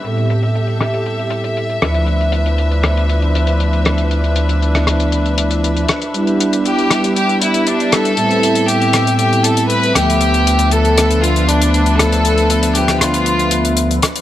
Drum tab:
HH |xxxxxxxxxxxxxxxx|xxxxxxxxxxxxxxxx|xxxxxxxxxxxxxxxx|xxxxxxxxxxxxxxxx|
SD |------r-------r-|------r-------r-|-----rr-------r-|------r-------r-|

HH |xxxxxxxxxxxxxxxx|xxxxxxxxxxxxxxxx|xxxxxxxxxxxxxxxx|
SD |------r-------r-|------r-------r-|-----rr-------r-|